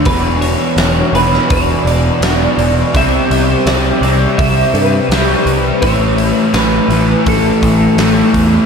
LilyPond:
<<
  \new Staff \with { instrumentName = "Clean electric guitar" } { \time 4/4 \key e \dorian \tempo 4 = 83 b'8 cis''4 b'8 d''8 d''4. | e''8 c''8 d''4 e''8 b'4. | cis''4 b'4 a'4. r8 | }
  \new Staff \with { instrumentName = "Distorted electric guitar" } { \clef bass \time 4/4 \key e \dorian <e, b, e>4. <e, b, e>4. <e, b, e>4 | <c g c'>4. <c g c'>4. <c g c'>4 | <a, e a>4. <a, e a>4. <a, e a>4 | }
  \new Staff \with { instrumentName = "Picked electric bass" } { \clef bass \time 4/4 \key e \dorian e,,4 e,,8 e,,8 e,,8 e,,8 e,,8 e,,8 | c,8 c,8 c,8 c,8 c,8 g,8 c,8 c,8 | a,,4 a,,8 a,,8 a,,8 a,,8 a,,8 e,8 | }
  \new DrumStaff \with { instrumentName = "Drums" } \drummode { \time 4/4 <hho bd>8 hho8 <hho sn>8 hho16 sn16 <hho bd>8 hho8 <hho sn>8 hho8 | <hho bd>8 hho8 <hho sn>8 hho8 <hho bd>8 hho8 <hho sn>8 hho8 | <hho bd>8 hho8 <hho sn>8 hho8 <hho bd>8 <hho bd>8 <hho sn>8 <hho bd>8 | }
>>